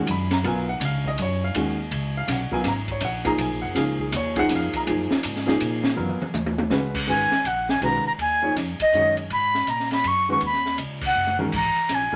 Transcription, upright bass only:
0.07 F#2
0.43 B1
0.80 C#2
1.18 F#2
1.55 D#2
1.91 C#2
2.27 B1
2.51 muted upright bass stroke
2.64 G#1
3.01 A#1
3.38 B1
3.50 A#1
3.63 F#1
3.75 C#2
4.12 D#2
4.50 F2
4.73 muted upright bass stroke
4.88 F#2
5.11 muted upright bass stroke
5.25 G#2
5.61 A#2
5.98 F#2
6.22 muted upright bass stroke
6.34 D#2
6.71 C#2
7.08 G#1
7.31 muted upright bass stroke
7.44 A#1
7.81 B1
8.05 muted upright bass stroke
8.18 D#2
8.55 F2
8.79 muted upright bass stroke
8.93 F#2
9.30 G#2
9.67 A#2
10.04 F#2
10.41 D#2
10.78 C#2
11.15 F#1
11.52 G#1
11.76 muted upright bass stroke
11.90 A#1
12.13 muted upright bass stroke

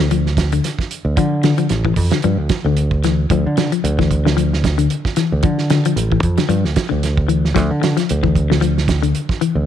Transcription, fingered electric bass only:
Already playing: D2
1.05 D2
1.17 D3
1.70 A1
1.97 F2
2.24 G2
2.38 D2
2.65 D2
3.31 D2
3.46 D3
3.84 D2
5.32 D2
5.44 D3
5.96 A1
6.23 F2
6.49 G2
6.65 D2
6.91 D2
7.56 D2
7.71 D3
8.11 D2
9.55 D2

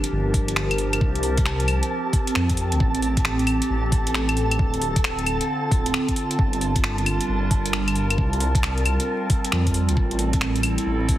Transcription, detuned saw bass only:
0.12 G1
1.01 C2
2.36 F2
2.72 D2
2.80 A1
3.70 A1
4.59 D1
5.71 D1
6.39 G1
7.28 G1
8.18 C2
9.52 F2
9.89 D2
9.97 A1
10.86 A1

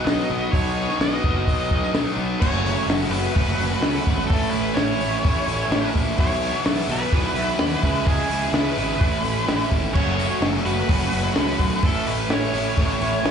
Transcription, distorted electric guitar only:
Already playing: B2 D#4
0.07 F#3
0.30 B3
0.54 B2
0.76 D#4
1.00 F#3
1.24 B2
1.46 F#3
1.70 D#4
1.94 F#3
2.18 B3
2.40 F#3 A3 C#4 F#4
2.65 A3 C#4 F#4
2.88 F#3 A3 C#4 F#4
3.10 F#3 A3 C#4 F#4
3.33 F#3 A3 C#4 F#4
3.58 A3 C#4 F#4
3.80 F#3 A3 C#4 F#4
4.06 A3 C#4 F#4
4.28 A2 E3 A3 C#4 E4
4.51 A3 C#4 E4
4.74 E3 A3 C#4 E4
4.99 A2 E3 A3 C#4 E4
5.22 E3 A3 C#4 E4
5.45 A3 C#4 E4
5.68 A2 E3 A3 C#4 E4
5.93 A3 C#4 E4
6.16 B2 E3 F#3 B3 E4
6.40 F#3 B3 E4
6.64 E3 F#3 B3 E4
6.89 B2 E3 F#3 B3 E4
7.11 E3 F#3 B3 E4
7.34 F#3 B3 E4
7.58 B2 E3 F#3 B3 E4
7.82 C#3 G#3 C#4 E4
8.05 C#3 G#3 C#4 E4
8.28 G#3 C#4 E4
8.51 C#3 G#3 C#4 E4
8.74 C#3 G#3 C#4 E4
8.98 A2 E3 A3 C#4 E4
9.22 A3 C#4 E4
9.45 A2 E3 A3 C#4 E4
9.70 A3 C#4 E4
9.93 F#3 A3 C#4 F#4
10.16 A3 C#4 F#4
10.40 F#3 A3 C#4 F#4
10.65 F#3 A3 C#4 F#4
10.88 F#3 A3 C#4 F#4
11.12 A3 C#4 F#4
11.35 F#3 A3 C#4 F#4
11.59 A3 C#4 F#4
11.82 A2 E3 A3 C#4 E4
12.05 A3 C#4 E4
12.28 E3 A3 C#4 E4
12.53 A2 E3 A3 C#4 E4
12.77 E3 A3 C#4 E4
13.00 A3 C#4 E4
13.23 A2 E3 A3 C#4 E4

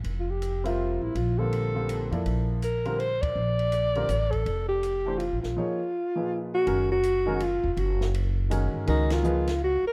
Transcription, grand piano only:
0.64 G3 C4 F4 A#4 E5
1.39 D3 G3 A#3 C4 F4
1.74 D3 G3 A#3 C4 F4
2.11 F3 A#3 E4 A4 D5
2.85 D3 G3 C4 F4 A#4
3.95 D3 G3 C4 F4 A#4
5.06 E3 A3 D4 G4 C5
5.57 F3 A#3 D#4 G#4 C#5
6.16 A#2 F3 D#4 G#4 B4
6.66 D#3 G#3 C#4 F#4 A#4
7.26 D#3 G#3 C#4 F#4 A#4
8.50 D#3 G#3 C#4 F#4 A#4
8.87 D#3 G#3 C#4 F#4 A#4
9.23 F3 A#3 D#4 G#4 B4

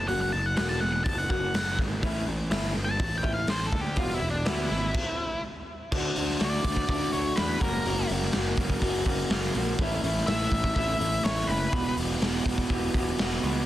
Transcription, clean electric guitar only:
0.08 F#3 A#3 C#4 F#4
0.32 muted clean electric guitar stroke
0.57 F#3 A#3 C#4 F#4
0.82 muted clean electric guitar stroke
1.06 muted clean electric guitar stroke
1.30 F#3 A#3 C#4 F#4
1.53 muted clean electric guitar stroke
1.79 muted clean electric guitar stroke
2.02 E3 A3 C#4 E4
2.27 muted clean electric guitar stroke
2.50 E3 A3 C#4 E4
2.74 muted clean electric guitar stroke
2.99 muted clean electric guitar stroke
3.23 E3 A3 C#4 E4
3.47 muted clean electric guitar stroke
3.72 muted clean electric guitar stroke
3.96 E3 G3 B3 F#4
4.21 muted clean electric guitar stroke
4.45 E3 G3 B3 F#4
4.70 muted clean electric guitar stroke
5.92 D3 A3 D4 F#4
6.16 A3 D4 F#4
6.39 D3 A3 D4 F#4
6.64 A3 D4 F#4
6.88 D3 A3 D4 F#4
7.14 A3 D4 F#4
7.36 D3 A3 D4 F#4
7.61 F#2 C#3 F#3 A#3 C#4 F#4
7.85 F#2 C#3 F#3 A#3 C#4 F#4
8.09 F#3 A#3 C#4 F#4
8.32 F#2 C#3 F#3 A#3 C#4 F#4
8.57 F#3 A#3 C#4 F#4
8.80 F#3 A#3 C#4 F#4
9.05 F#3 A#3 C#4 F#4
9.29 F#2 C#3 F#3 A#3 C#4 F#4
9.55 F#3 A#3 C#4 F#4
9.79 A2 E3 A3 C#4 E4
10.03 A3 C#4 E4
10.27 A2 E3 A3 C#4 E4
10.51 A3 C#4 E4
10.75 E3 A3 C#4 E4
10.99 A3 C#4 E4
11.23 A2 E3 A3 C#4 E4
11.48 A3 C#4 E4
11.71 E2 B2 E3 G3 B3 F#4
11.96 E3 G3 B3 F#4
12.20 E2 B2 E3 G3 B3 F#4
12.45 E3 G3 B3 F#4
12.69 E3 G3 B3 F#4
12.96 E3 G3 B3 F#4
13.19 E2 B2 E3 G3 B3 F#4
13.44 E3 G3 B3 F#4

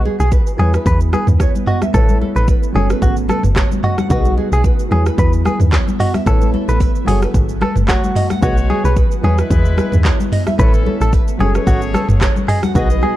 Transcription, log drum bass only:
0.20 B1
0.59 E2
0.86 E2
1.28 D#2
1.94 A1
2.36 A1
2.75 F#1
3.02 G#1
3.44 F#1
4.10 B1
4.52 B1
4.91 E2
5.18 E2
5.60 D#2
6.26 A1
6.68 A1
7.07 F#1
7.34 G#1
7.76 F#1
8.43 B1
8.84 B1
9.24 E2
9.50 E2
9.93 D#2
10.59 A1
11.01 A1
11.40 F#1
11.67 G#1
12.09 F#1
12.75 B1

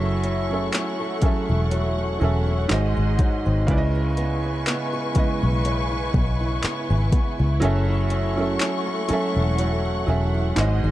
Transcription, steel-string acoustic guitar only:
Already playing: F#3
0.02 E4
0.24 C#4
0.51 E4
0.74 C#4
1.00 A4
1.22 C#4
1.49 E4
1.72 F#3
1.98 E4
2.21 C#4
2.47 E4
2.70 G#2
2.97 D#4
3.19 F#3
3.46 C4
3.68 C#3
3.95 E4
4.18 B3
4.44 E4
4.67 B3
4.93 G#4
5.16 B3
5.43 E4
5.65 C#3
5.92 E4
6.14 B3
6.41 E4
6.63 B3
6.90 G#4
7.13 B3
7.39 E4
7.62 F#3
7.89 E4
8.11 C#4
8.38 E4
8.60 C#4
8.87 A4
9.10 C#4
9.36 E4
9.59 F#3
9.85 E4
10.08 C#4
10.34 E4
10.57 G#2
10.84 D#4

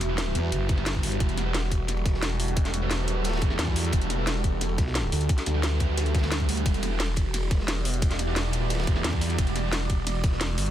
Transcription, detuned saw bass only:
0.01 E1
1.20 E1
2.06 E1
3.01 D#1
3.28 D1
3.93 E1
5.12 D2
5.46 D2
6.66 E1
7.51 E1
8.46 D#1
8.73 D1
9.38 E1
10.24 E1
10.58 G1

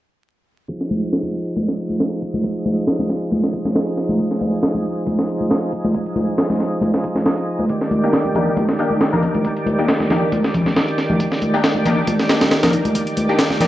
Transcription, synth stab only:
8.03 A#3 D4 D#4 G4
8.35 A#3 D4 D#4 G4
8.79 A#3 D4 D#4 G4
9.12 A#3 D4 D#4 A#4
9.79 A#3 D4 D#4 G4
10.10 A#3 D4 D#4 G4
11.54 A#3 D4 D#4 G4
11.85 A#3 D4 D#4 G4
12.29 A#3 D4 D#4 G4
12.63 A#3 D4 D#4 A#4
13.29 A#3 D4 D#4 G4
13.61 A#3 D4 D#4 G4

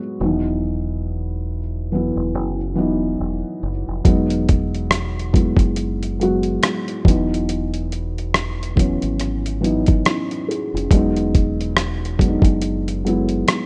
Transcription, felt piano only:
Already playing: F#3 G#3 B3 F#4
0.20 D#3 F#3 B3 D#4
0.26 E3
1.92 E3 F#3 B3 E4
2.75 E3 F#3 B3 D#4
4.05 F#3 G#3 B3 D#4
5.33 F#3 G#3 B3 E4
6.20 F#3 G#3 B3 F#4
7.05 E3 F#3 B3 D#4
8.76 E3 F#3 B3 C#4
9.61 E3 F#3 B3 D#4
10.07 C#4 E4
10.48 E4 G#4
10.74 C#4 E4
10.91 F#3 G#3 B3 D#4
12.19 F#3 G#3 B3 D4
12.28 D#4
13.05 F#3 G#3 B3 E4

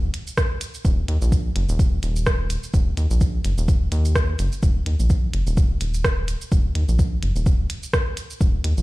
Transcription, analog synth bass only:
0.85 D#1
1.08 D#2
1.22 A#1
1.56 F#1
1.69 D#1
2.03 D#1
2.74 D#1
2.97 D#2
3.11 A#1
3.45 F#1
3.58 D#1
3.92 D#2
4.39 F#1
4.63 D#1
4.86 D#2
5.00 A#1
5.34 F#1
5.47 D#1
5.81 D#1
6.52 D#1
6.75 D#2
6.88 A#1
7.22 F#1
7.36 D#1
8.41 D#1
8.64 D#2
8.77 A#1

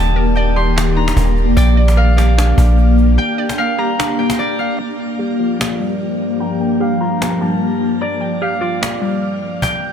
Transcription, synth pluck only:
Already playing: A#3 D#4 G4 G5
0.16 A#4
0.37 D5
0.56 G4
0.76 D#4
0.97 D4
1.57 G5
1.77 D5
1.97 A#4
2.18 G4
2.38 D4
2.58 A#3
3.19 G5
3.38 D5
3.58 A#4
3.78 G4
3.99 D4
4.19 A#3
4.79 A#5
4.99 G5
5.19 G4
5.40 F4
5.60 A#3
5.80 G3
6.40 A#5
6.61 G5
6.80 G4
7.01 F4
7.21 A#3
7.41 G3
8.01 A#5
8.21 G5
8.42 G4
8.61 F4
8.81 A#3
9.02 G3

